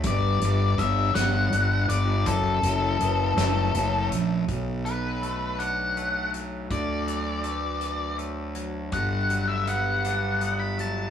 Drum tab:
HH |xxxxxx|xxxxxx|xxxxxx|xxxxxx|
SD |---o--|---o--|------|------|
BD |o-o---|o-----|o-----|o-----|

HH |xxxxxx|
SD |------|
BD |o-----|